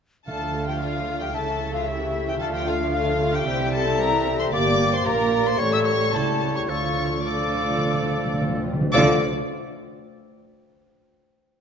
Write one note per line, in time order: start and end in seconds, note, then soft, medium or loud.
0.27 1.30 D2 soft
0.27 1.30 D3 soft
0.27 1.04 D3 medium
0.27 0.40 D3 soft
0.27 3.48 A3 soft
0.27 1.31 F4 soft
0.27 0.65 A4 soft
0.27 1.36 F5 soft
0.27 0.65 A5 medium
0.27 0.65 A5 soft
0.41 0.54 F3 soft
0.54 0.68 A3 soft
0.67 0.81 F3 soft
0.67 0.80 G4 soft
0.67 0.74 G5 soft
0.67 0.81 G5 medium
0.80 0.95 D3 soft
0.80 1.20 F4 medium
0.80 1.20 F5 medium
0.95 1.08 F3 soft
1.08 1.21 A3 soft
1.21 1.34 F3 soft
1.21 1.34 G4 soft
1.21 1.34 G5 medium
1.21 1.27 G5 soft
1.34 2.41 C#2 soft
1.34 2.40 C#3 soft
1.34 1.47 C#3 soft
1.34 2.41 E4 soft
1.34 1.73 A4 medium
1.34 1.84 A4 medium
1.34 2.43 E5 soft
1.34 1.74 A5 medium
1.48 1.61 E3 soft
1.61 1.74 A3 soft
1.74 1.87 E3 soft
1.74 1.87 F4 soft
1.74 1.87 F5 medium
1.74 1.81 F5 soft
1.87 2.00 C#3 soft
1.87 2.27 E4 soft
1.87 2.40 G4 medium
1.87 2.27 E5 medium
1.87 2.27 E5 soft
2.00 2.14 E3 soft
2.13 2.27 A3 soft
2.27 2.41 E3 soft
2.27 2.40 G4 medium
2.27 2.33 G5 medium
2.27 2.34 G5 medium
2.40 3.45 D2 medium
2.40 2.53 D3 medium
2.40 3.45 D3 medium
2.40 3.16 D3 medium
2.40 3.45 F4 medium
2.40 2.93 F4 medium
2.40 2.53 A4 medium
2.40 3.46 F5 medium
2.40 2.46 A5 medium
2.40 2.54 A5 medium
2.53 2.67 F3 medium
2.53 2.66 G4 medium
2.53 2.67 G5 medium
2.53 2.69 G5 medium
2.66 2.80 A3 soft
2.66 2.74 F4 medium
2.66 2.92 F5 medium
2.66 2.94 F5 medium
2.80 2.94 F3 medium
2.92 3.07 D3 medium
2.92 3.32 F4 medium
2.92 3.46 A4 medium
2.92 3.33 F5 medium
2.92 3.37 F5 medium
3.07 3.20 F3 medium
3.20 3.34 A3 medium
3.33 3.47 F3 medium
3.33 3.73 G4 medium
3.33 3.73 G5 medium
3.33 3.75 G5 medium
3.46 4.50 C2 medium
3.46 3.59 C3 medium
3.46 4.50 C3 medium
3.46 4.52 G3 medium
3.46 4.52 E4 medium
3.46 3.59 C5 medium
3.46 4.50 E5 medium
3.59 3.73 E3 medium
3.73 3.86 G3 medium
3.73 3.99 A4 medium
3.73 4.51 A4 medium
3.73 3.99 A5 medium
3.86 4.00 C4 medium
3.99 4.12 G3 medium
3.99 4.39 A#4 medium
3.99 4.38 A#5 medium
3.99 4.39 A#5 medium
4.13 4.26 E3 medium
4.26 4.39 C3 medium
4.39 4.53 E3 medium
4.39 4.52 C5 medium
4.39 4.45 C6 medium
4.52 5.02 G1 medium
4.52 5.02 G2 medium
4.52 5.02 A#3 medium
4.52 5.02 G4 medium
4.52 5.06 G4 medium
4.52 4.92 D5 medium
4.52 5.02 D5 medium
4.52 4.92 D6 medium
4.93 5.06 C5 medium
4.93 4.99 C6 medium
4.93 5.07 C6 medium
5.05 5.59 A#1 medium
5.05 5.59 A#2 medium
5.05 5.58 A#3 medium
5.05 5.60 A#3 medium
5.05 5.58 G4 medium
5.05 5.46 A#4 medium
5.05 5.59 A#4 medium
5.05 5.61 D5 medium
5.05 5.45 A#5 medium
5.05 5.48 A#5 medium
5.46 5.59 C5 medium
5.46 5.59 C6 medium
5.46 5.61 C6 medium
5.58 6.12 A1 medium
5.58 6.37 A2 medium
5.58 6.12 A2 medium
5.58 6.13 G3 medium
5.58 6.12 A3 medium
5.58 6.12 G4 medium
5.58 6.13 A4 medium
5.58 5.72 C#5 medium
5.58 6.13 C#5 medium
5.58 5.72 C#6 medium
5.58 5.75 C#6 medium
5.73 5.78 E5 medium
5.73 5.78 E6 medium
5.73 5.88 E6 medium
5.85 6.13 C#5 medium
5.85 6.13 C#6 medium
5.85 6.14 C#6 medium
6.13 6.69 C#2 medium
6.13 6.69 C#3 medium
6.13 6.70 G3 medium
6.13 6.68 A3 medium
6.13 6.69 E4 medium
6.13 6.68 G4 medium
6.13 6.55 A4 medium
6.13 6.71 C#5 medium
6.13 6.55 A5 medium
6.13 6.57 A5 medium
6.55 6.67 C#5 medium
6.55 6.61 C#6 medium
6.55 6.69 C#6 medium
6.68 8.69 D2 medium
6.68 8.69 D3 medium
6.68 7.09 F3 medium
6.68 7.24 A3 medium
6.68 7.24 F4 medium
6.68 8.62 F4 medium
6.68 7.08 A4 medium
6.68 7.24 C#5 medium
6.68 7.24 C#6 medium
6.68 7.05 C#6 medium
6.77 6.83 D3 soft
6.85 6.91 D3 soft
6.92 6.99 D3 soft
7.00 7.06 D3 soft
7.08 7.14 D3 soft
7.15 7.22 D3 soft
7.23 7.30 D3 soft
7.23 8.63 F3 medium
7.23 8.70 A3 medium
7.23 8.70 F4 medium
7.23 8.63 A4 medium
7.23 8.35 D5 medium
7.23 8.37 D6 medium
7.23 8.33 D6 medium
7.31 7.37 D3 soft
7.38 7.46 D3 soft
7.47 7.54 D3 soft
7.55 7.62 D3 medium
7.63 7.69 D3 medium
7.70 7.77 D3 medium
7.78 7.85 D3 medium
7.86 7.93 D3 medium
7.94 8.01 D3 medium
8.02 8.08 D3 medium
8.10 8.16 D3 medium
8.18 8.24 D3 medium
8.25 8.33 D3 medium
8.34 8.40 D3 medium
8.41 8.48 D3 medium
8.49 8.56 D3 medium
8.57 8.65 D3 medium
8.66 8.72 D3 medium
8.73 8.80 D3 loud
8.81 8.89 D3 loud
8.93 9.25 D2 medium
8.93 9.20 D3 medium
8.93 9.25 D3 medium
8.93 9.17 F3 medium
8.93 9.17 A3 medium
8.93 9.25 A3 medium
8.93 9.17 F4 medium
8.93 9.25 F4 medium
8.93 9.16 A4 medium
8.93 9.25 D5 medium
8.93 9.25 D6 medium